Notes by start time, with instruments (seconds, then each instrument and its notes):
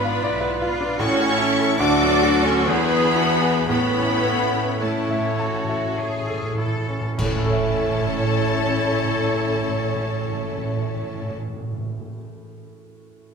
Already playing: double bass section G#1, grand piano G#2 D4 F4 B4 D5 F5 B5, french horn section B3, viola section B3, cello section D4, violin section F4 B4 B5, clarinet F4, flute section B4, cor anglais B4
0.05 grand piano F5
0.22 double bass section B1, cello section E4, grand piano D5
0.41 grand piano B4
0.61 cello section F4, grand piano F4
0.81 grand piano D4
0.98 double bass section A1, timpani A2, grand piano A2, french horn section C#4, viola section C#4, violin section E4 A4 C#6, clarinet E4, cello section F#4, cor anglais A4, flute section C#5
1.19 grand piano A3
1.38 grand piano E4, cello section E4
1.59 grand piano A4
1.78 grand piano D2, double bass section D2, french horn section D4, viola section D4, violin section F#4 A4 D6, clarinet F#4, cello section F#4, cor anglais A4, flute section D5
2.02 grand piano F#3
2.22 grand piano F#4
2.43 french horn section C#4, viola section C#4, grand piano A4, flute section C#5, violin section C#6
2.66 grand piano E2, double bass section E2, french horn section B3, viola section B3, violin section E4 G#4 B5, clarinet E4, cello section G#4, cor anglais G#4, flute section B4
2.92 grand piano B3
3.15 violin section D4, grand piano E4, cello section F#4
3.42 grand piano G#4
3.68 double bass section A1, grand piano A2, timpani A2, french horn section B3, viola section B3, violin section C#4 A4 B5, clarinet E4, cello section E4, flute section B4, cor anglais C#5
3.97 timpani A2, grand piano C#4
4.12 timpani A2
4.22 timpani A2, grand piano E4
4.43 timpani A2
4.53 timpani A2, grand piano A4
4.65 timpani A2
4.75 timpani A2, french horn section A3
4.80 viola section A3, violin section C#4 A4 A5, clarinet E4, cello section E4, flute section A4, grand piano C#5, cor anglais C#5
4.87 timpani A2
4.97 timpani A2
5.08 timpani A2, grand piano E5
5.20 timpani A2
5.31 timpani A2
5.39 cello section F#4, grand piano A5
5.64 timpani A2
5.69 grand piano E5
5.86 timpani A2
5.98 timpani A2, cello section G#4, grand piano C#5
6.09 timpani A2
6.20 timpani A2
6.27 grand piano A4
6.32 timpani A2
6.42 timpani A2
6.54 timpani A2
6.58 grand piano E4, cello section A4
6.66 timpani A2
6.77 timpani A2
6.88 timpani A2, grand piano C#4
7.00 timpani A2
7.17 double bass section A1, timpani A2, cello section A2, grand piano A2, french horn section A3, violin section C#4 E4 A5, clarinet E4, viola section A4, flute section C#5, cor anglais C#5, concert bass drum, crash
7.24 timpani A2, grand piano A3
7.29 timpani A2, grand piano C#4
7.35 timpani A2, grand piano E4
7.42 timpani A2, grand piano A4
7.48 timpani A2
7.53 timpani A2, grand piano E5
7.61 timpani A2
7.67 timpani A2
7.74 timpani A2
7.81 timpani A2
7.87 timpani A2
7.93 timpani A2
8.00 timpani A2
8.07 timpani A2
8.13 timpani A2
8.19 timpani A2
8.25 timpani A2
8.32 timpani A2
8.38 timpani A2
8.45 timpani A2
8.52 timpani A2
8.58 timpani A2
8.65 timpani A2
8.71 timpani A2
8.77 timpani A2
8.83 timpani A2
8.90 timpani A2
8.97 timpani A2
9.04 timpani A2
9.10 timpani A2
9.16 timpani A2
9.23 timpani A2
9.29 timpani A2
9.35 timpani A2
9.42 timpani A2
9.49 timpani A2
9.55 timpani A2
9.62 timpani A2
9.68 timpani A2
9.75 timpani A2
9.82 timpani A2
9.88 timpani A2
9.94 timpani A2
10.01 timpani A2
10.07 timpani A2
10.12 timpani A2
10.19 timpani A2
10.26 timpani A2
10.32 timpani A2
10.39 timpani A2
10.45 timpani A2
10.51 timpani A2
10.57 timpani A2
10.64 timpani A2
10.70 timpani A2
10.76 timpani A2
10.82 timpani A2
10.89 timpani A2
10.96 timpani A2
11.02 timpani A2
11.09 timpani A2
11.15 timpani A2
11.22 timpani A2
11.29 timpani A2
11.35 timpani A2
11.41 timpani A2
11.48 timpani A2
11.54 timpani A2
11.60 timpani A2
11.67 timpani A2
11.72 timpani A2
11.78 timpani A2
11.86 timpani A2
11.92 timpani A2
11.99 timpani A2